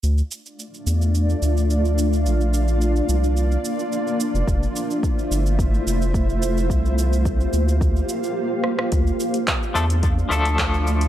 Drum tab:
HH |----------------|----------------|----------------|----------------|
SH |xxxxxxxxxxxxxxxx|xxxxxxxxxxxxxxxx|xxxxxxxxxxxxxxxx|xxxxxxxxxxxx----|
CP |----------------|----------------|----------------|----------------|
SD |----------------|----------------|----------------|--------------rr|
BD |----------------|----------------|o---o---o---o---|o---o---o-------|

HH |x--xx--xx--xx--x|
SH |xxxxxxxxxxxxxxxx|
CP |----x-------x---|
SD |----------------|
BD |o---o---o---o---|